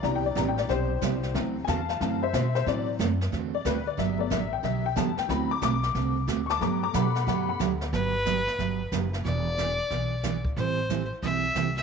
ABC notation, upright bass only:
X:1
M:4/4
L:1/8
Q:"Swing" 1/4=182
K:G
V:1 name="Upright bass" clef=bass
C,,2 A,,,2 B,,,2 C,,2 | D,,2 E,,2 F,,2 B,,2 | A,,2 F,,2 E,,2 D,,2 | G,,,2 A,,,2 B,,,2 E,, z |
D,,2 B,,,2 C,,2 D,,2 | G,,2 B,,2 F,,2 D,,2 | G,,,4 G,,,2 F,,,2 | E,,,4 B,,,4 |
A,,,4 B,,,2 C,,2 |]